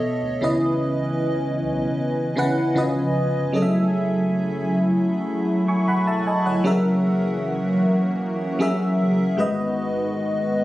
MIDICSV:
0, 0, Header, 1, 4, 480
1, 0, Start_track
1, 0, Tempo, 779221
1, 257, Time_signature, 4, 2, 24, 8
1, 6557, End_track
2, 0, Start_track
2, 0, Title_t, "FM electric piano"
2, 0, Program_c, 0, 5
2, 0, Control_c, 0, 64, 127
2, 0, Note_on_c, 0, 47, 89
2, 0, Note_on_c, 0, 59, 78
2, 0, Note_on_c, 0, 69, 80
2, 0, Note_on_c, 0, 73, 81
2, 0, Note_on_c, 0, 75, 100
2, 253, Note_on_c, 0, 49, 82
2, 257, Note_on_c, 0, 61, 78
2, 262, Note_on_c, 0, 64, 76
2, 266, Note_off_c, 0, 69, 0
2, 266, Control_c, 0, 64, 0
2, 268, Note_off_c, 0, 47, 0
2, 268, Note_on_c, 0, 71, 73
2, 269, Note_off_c, 0, 73, 0
2, 270, Note_off_c, 0, 59, 0
2, 271, Note_off_c, 0, 75, 0
2, 273, Note_on_c, 0, 75, 94
2, 387, Control_c, 0, 64, 127
2, 854, Note_off_c, 0, 49, 0
2, 856, Note_off_c, 0, 61, 0
2, 858, Note_off_c, 0, 64, 0
2, 861, Note_off_c, 0, 71, 0
2, 864, Note_off_c, 0, 75, 0
2, 1452, Note_on_c, 0, 49, 89
2, 1457, Note_on_c, 0, 61, 84
2, 1462, Note_on_c, 0, 64, 79
2, 1468, Note_on_c, 0, 71, 81
2, 1472, Note_on_c, 0, 78, 99
2, 1686, Note_off_c, 0, 49, 0
2, 1691, Note_off_c, 0, 61, 0
2, 1694, Note_on_c, 0, 49, 89
2, 1699, Note_off_c, 0, 64, 0
2, 1699, Note_on_c, 0, 61, 85
2, 1702, Note_off_c, 0, 71, 0
2, 1703, Note_on_c, 0, 65, 81
2, 1704, Control_c, 0, 64, 0
2, 1705, Note_off_c, 0, 78, 0
2, 1709, Note_on_c, 0, 71, 84
2, 1714, Note_on_c, 0, 75, 100
2, 1804, Control_c, 0, 64, 127
2, 2079, Note_off_c, 0, 49, 0
2, 2082, Note_off_c, 0, 61, 0
2, 2084, Note_off_c, 0, 65, 0
2, 2087, Note_off_c, 0, 71, 0
2, 2090, Note_off_c, 0, 75, 0
2, 2172, Note_on_c, 0, 54, 86
2, 2177, Note_on_c, 0, 61, 81
2, 2181, Note_on_c, 0, 68, 76
2, 2186, Control_c, 0, 64, 0
2, 2187, Note_on_c, 0, 69, 76
2, 2193, Note_on_c, 0, 75, 74
2, 2225, Note_off_c, 0, 75, 0
2, 2232, Note_on_c, 0, 76, 90
2, 2289, Control_c, 0, 64, 127
2, 2773, Note_off_c, 0, 54, 0
2, 2776, Note_off_c, 0, 61, 0
2, 2778, Note_off_c, 0, 68, 0
2, 2781, Note_off_c, 0, 69, 0
2, 2803, Note_off_c, 0, 76, 0
2, 3501, Note_on_c, 0, 85, 66
2, 3503, Note_on_c, 0, 80, 53
2, 3613, Note_off_c, 0, 85, 0
2, 3614, Note_off_c, 0, 80, 0
2, 3621, Note_on_c, 0, 83, 68
2, 3625, Note_on_c, 0, 78, 60
2, 3733, Note_off_c, 0, 83, 0
2, 3735, Note_off_c, 0, 78, 0
2, 3741, Note_on_c, 0, 81, 72
2, 3744, Note_on_c, 0, 76, 60
2, 3853, Note_off_c, 0, 81, 0
2, 3855, Note_off_c, 0, 76, 0
2, 3860, Note_on_c, 0, 80, 62
2, 3863, Note_on_c, 0, 75, 53
2, 3973, Note_off_c, 0, 80, 0
2, 3974, Note_off_c, 0, 75, 0
2, 3979, Note_on_c, 0, 78, 64
2, 3983, Note_on_c, 0, 73, 58
2, 4090, Note_on_c, 0, 54, 88
2, 4094, Note_on_c, 0, 61, 77
2, 4099, Note_on_c, 0, 68, 80
2, 4104, Control_c, 0, 64, 0
2, 4104, Note_on_c, 0, 70, 84
2, 4109, Note_on_c, 0, 76, 96
2, 4199, Control_c, 0, 64, 127
2, 4206, Note_off_c, 0, 78, 0
2, 4208, Note_off_c, 0, 73, 0
2, 4692, Note_off_c, 0, 54, 0
2, 4694, Note_off_c, 0, 61, 0
2, 4697, Note_off_c, 0, 68, 0
2, 4699, Note_off_c, 0, 70, 0
2, 4702, Note_off_c, 0, 76, 0
2, 5291, Note_on_c, 0, 54, 93
2, 5296, Note_on_c, 0, 61, 86
2, 5302, Note_on_c, 0, 68, 87
2, 5306, Note_on_c, 0, 70, 82
2, 5310, Note_on_c, 0, 76, 104
2, 5743, Note_off_c, 0, 54, 0
2, 5746, Note_off_c, 0, 61, 0
2, 5748, Note_off_c, 0, 68, 0
2, 5750, Note_off_c, 0, 70, 0
2, 5753, Note_off_c, 0, 76, 0
2, 5770, Note_on_c, 0, 44, 89
2, 5775, Note_on_c, 0, 56, 79
2, 5780, Note_on_c, 0, 66, 75
2, 5785, Note_on_c, 0, 71, 76
2, 5786, Control_c, 0, 64, 0
2, 5790, Note_on_c, 0, 75, 97
2, 5896, Control_c, 0, 64, 127
2, 6542, Note_off_c, 0, 44, 0
2, 6544, Note_off_c, 0, 56, 0
2, 6547, Note_off_c, 0, 66, 0
2, 6549, Note_off_c, 0, 71, 0
2, 6552, Note_off_c, 0, 75, 0
2, 6557, End_track
3, 0, Start_track
3, 0, Title_t, "Analog synth pad"
3, 0, Program_c, 1, 89
3, 255, Note_on_c, 1, 52, 76
3, 255, Note_on_c, 1, 59, 69
3, 256, Note_on_c, 1, 80, 87
3, 257, Note_on_c, 1, 61, 69
3, 1682, Note_off_c, 1, 52, 0
3, 1693, Note_on_c, 1, 53, 75
3, 2157, Note_off_c, 1, 59, 0
3, 2158, Note_off_c, 1, 61, 0
3, 2170, Note_off_c, 1, 53, 0
3, 2172, Note_on_c, 1, 64, 74
3, 2174, Note_on_c, 1, 54, 80
3, 2175, Note_on_c, 1, 57, 70
3, 4072, Note_off_c, 1, 80, 0
3, 4075, Note_off_c, 1, 64, 0
3, 4076, Note_off_c, 1, 54, 0
3, 4077, Note_off_c, 1, 57, 0
3, 4094, Note_on_c, 1, 58, 72
3, 4095, Note_on_c, 1, 52, 75
3, 4096, Note_on_c, 1, 61, 72
3, 4096, Note_on_c, 1, 66, 88
3, 5759, Note_off_c, 1, 58, 0
3, 5760, Note_off_c, 1, 52, 0
3, 5760, Note_off_c, 1, 61, 0
3, 5760, Note_off_c, 1, 66, 0
3, 5777, Note_on_c, 1, 66, 85
3, 5778, Note_on_c, 1, 51, 75
3, 5778, Note_on_c, 1, 59, 71
3, 5779, Note_on_c, 1, 56, 73
3, 6557, Note_off_c, 1, 51, 0
3, 6557, Note_off_c, 1, 56, 0
3, 6557, Note_off_c, 1, 59, 0
3, 6557, Note_off_c, 1, 66, 0
3, 6557, End_track
4, 0, Start_track
4, 0, Title_t, "Sub bass"
4, 0, Program_c, 2, 38
4, 138, Note_on_c, 2, 38, 88
4, 229, Note_off_c, 2, 38, 0
4, 257, Note_on_c, 2, 37, 118
4, 976, Note_on_c, 2, 35, 89
4, 986, Note_off_c, 2, 37, 0
4, 1160, Note_off_c, 2, 35, 0
4, 1694, Note_on_c, 2, 37, 103
4, 1879, Note_off_c, 2, 37, 0
4, 2055, Note_on_c, 2, 31, 86
4, 2147, Note_off_c, 2, 31, 0
4, 2176, Note_on_c, 2, 30, 112
4, 2872, Note_off_c, 2, 30, 0
4, 2894, Note_on_c, 2, 30, 89
4, 3078, Note_off_c, 2, 30, 0
4, 3613, Note_on_c, 2, 28, 92
4, 3798, Note_off_c, 2, 28, 0
4, 3974, Note_on_c, 2, 31, 84
4, 4067, Note_off_c, 2, 31, 0
4, 4094, Note_on_c, 2, 30, 110
4, 4791, Note_off_c, 2, 30, 0
4, 4814, Note_on_c, 2, 28, 88
4, 4999, Note_off_c, 2, 28, 0
4, 5537, Note_on_c, 2, 30, 94
4, 5720, Note_off_c, 2, 30, 0
4, 5776, Note_on_c, 2, 32, 99
4, 6143, Note_off_c, 2, 32, 0
4, 6557, End_track
0, 0, End_of_file